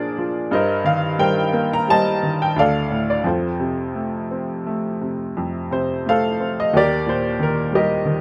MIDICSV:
0, 0, Header, 1, 2, 480
1, 0, Start_track
1, 0, Tempo, 681818
1, 362, Time_signature, 3, 2, 24, 8
1, 2288, Tempo, 703400
1, 4208, Tempo, 664452
1, 5756, End_track
2, 0, Start_track
2, 0, Title_t, "Upright piano"
2, 0, Program_c, 0, 0
2, 0, Control_c, 0, 64, 127
2, 0, Note_on_c, 0, 46, 60
2, 0, Note_on_c, 0, 53, 51
2, 0, Note_on_c, 0, 62, 57
2, 0, Note_on_c, 0, 65, 50
2, 0, Note_on_c, 0, 68, 57
2, 0, Note_on_c, 0, 70, 68
2, 0, Note_on_c, 0, 72, 63
2, 0, Note_on_c, 0, 74, 76
2, 97, Note_off_c, 0, 74, 0
2, 119, Note_off_c, 0, 53, 0
2, 129, Note_on_c, 0, 53, 52
2, 333, Note_off_c, 0, 46, 0
2, 340, Note_off_c, 0, 65, 0
2, 341, Note_off_c, 0, 68, 0
2, 349, Note_off_c, 0, 62, 0
2, 356, Note_off_c, 0, 53, 0
2, 361, Note_on_c, 0, 43, 70
2, 370, Control_c, 0, 64, 0
2, 373, Note_on_c, 0, 75, 77
2, 375, Note_off_c, 0, 70, 0
2, 377, Note_off_c, 0, 72, 0
2, 382, Note_on_c, 0, 72, 68
2, 383, Note_on_c, 0, 70, 61
2, 496, Control_c, 0, 64, 127
2, 594, Note_on_c, 0, 51, 50
2, 603, Note_on_c, 0, 77, 82
2, 609, Note_off_c, 0, 75, 0
2, 834, Note_off_c, 0, 70, 0
2, 834, Note_off_c, 0, 72, 0
2, 836, Note_on_c, 0, 55, 56
2, 841, Note_on_c, 0, 79, 83
2, 845, Note_on_c, 0, 70, 60
2, 845, Note_on_c, 0, 72, 67
2, 846, Note_off_c, 0, 77, 0
2, 1077, Note_on_c, 0, 58, 56
2, 1214, Note_off_c, 0, 79, 0
2, 1221, Note_on_c, 0, 82, 83
2, 1315, Note_off_c, 0, 55, 0
2, 1325, Note_on_c, 0, 55, 58
2, 1333, Note_off_c, 0, 72, 0
2, 1337, Note_off_c, 0, 82, 0
2, 1340, Note_on_c, 0, 81, 96
2, 1343, Note_on_c, 0, 72, 68
2, 1344, Note_on_c, 0, 75, 72
2, 1539, Note_off_c, 0, 51, 0
2, 1545, Note_off_c, 0, 70, 0
2, 1569, Note_on_c, 0, 51, 46
2, 1703, Note_on_c, 0, 79, 74
2, 1707, Note_off_c, 0, 81, 0
2, 1779, Note_off_c, 0, 43, 0
2, 1786, Note_off_c, 0, 58, 0
2, 1789, Note_off_c, 0, 72, 0
2, 1790, Note_off_c, 0, 75, 0
2, 1794, Note_off_c, 0, 55, 0
2, 1801, Note_off_c, 0, 51, 0
2, 1803, Note_on_c, 0, 38, 67
2, 1807, Note_off_c, 0, 79, 0
2, 1818, Control_c, 0, 64, 0
2, 1824, Note_on_c, 0, 77, 88
2, 1828, Note_on_c, 0, 69, 59
2, 1828, Note_on_c, 0, 74, 60
2, 1934, Control_c, 0, 64, 127
2, 2045, Note_on_c, 0, 45, 43
2, 2151, Note_off_c, 0, 77, 0
2, 2172, Note_off_c, 0, 74, 0
2, 2182, Note_on_c, 0, 74, 61
2, 2270, Note_off_c, 0, 69, 0
2, 2272, Note_off_c, 0, 38, 0
2, 2281, Note_off_c, 0, 45, 0
2, 2281, Note_on_c, 0, 41, 60
2, 2296, Control_c, 0, 64, 0
2, 2297, Note_on_c, 0, 72, 55
2, 2299, Note_off_c, 0, 74, 0
2, 2304, Note_on_c, 0, 65, 39
2, 2304, Note_on_c, 0, 69, 39
2, 2428, Control_c, 0, 64, 127
2, 2524, Note_on_c, 0, 48, 45
2, 2766, Note_on_c, 0, 57, 40
2, 2986, Note_off_c, 0, 72, 0
2, 2990, Note_off_c, 0, 65, 0
2, 2990, Note_off_c, 0, 69, 0
2, 3012, Note_on_c, 0, 60, 43
2, 3243, Note_off_c, 0, 57, 0
2, 3253, Note_on_c, 0, 57, 48
2, 3464, Note_off_c, 0, 48, 0
2, 3491, Note_on_c, 0, 48, 40
2, 3701, Note_off_c, 0, 41, 0
2, 3734, Note_on_c, 0, 41, 57
2, 3945, Note_off_c, 0, 60, 0
2, 3957, Note_off_c, 0, 48, 0
2, 3967, Note_on_c, 0, 48, 47
2, 3977, Note_on_c, 0, 72, 73
2, 4182, Note_off_c, 0, 57, 0
2, 4195, Note_off_c, 0, 72, 0
2, 4206, Note_on_c, 0, 57, 47
2, 4226, Note_on_c, 0, 77, 89
2, 4231, Note_on_c, 0, 72, 62
2, 4234, Note_on_c, 0, 69, 65
2, 4452, Note_on_c, 0, 60, 46
2, 4594, Note_on_c, 0, 75, 81
2, 4596, Note_off_c, 0, 77, 0
2, 4667, Note_off_c, 0, 41, 0
2, 4671, Note_off_c, 0, 48, 0
2, 4677, Note_off_c, 0, 72, 0
2, 4679, Note_off_c, 0, 57, 0
2, 4679, Note_off_c, 0, 69, 0
2, 4687, Note_off_c, 0, 60, 0
2, 4693, Note_on_c, 0, 39, 66
2, 4696, Note_off_c, 0, 75, 0
2, 4704, Control_c, 0, 64, 0
2, 4715, Note_on_c, 0, 67, 64
2, 4716, Note_on_c, 0, 70, 57
2, 4717, Note_on_c, 0, 74, 85
2, 4840, Control_c, 0, 64, 127
2, 4929, Note_on_c, 0, 46, 45
2, 4950, Note_off_c, 0, 74, 0
2, 4951, Note_on_c, 0, 72, 73
2, 5170, Note_on_c, 0, 51, 48
2, 5183, Note_off_c, 0, 70, 0
2, 5186, Note_off_c, 0, 72, 0
2, 5194, Note_on_c, 0, 70, 72
2, 5389, Note_off_c, 0, 67, 0
2, 5409, Note_on_c, 0, 55, 53
2, 5415, Note_off_c, 0, 70, 0
2, 5426, Note_on_c, 0, 70, 55
2, 5428, Note_on_c, 0, 67, 58
2, 5429, Note_on_c, 0, 75, 75
2, 5636, Note_off_c, 0, 51, 0
2, 5647, Note_on_c, 0, 51, 52
2, 5756, Note_off_c, 0, 39, 0
2, 5756, Note_off_c, 0, 46, 0
2, 5756, Note_off_c, 0, 51, 0
2, 5756, Note_off_c, 0, 55, 0
2, 5756, Note_off_c, 0, 67, 0
2, 5756, Note_off_c, 0, 70, 0
2, 5756, Note_off_c, 0, 75, 0
2, 5756, End_track
0, 0, End_of_file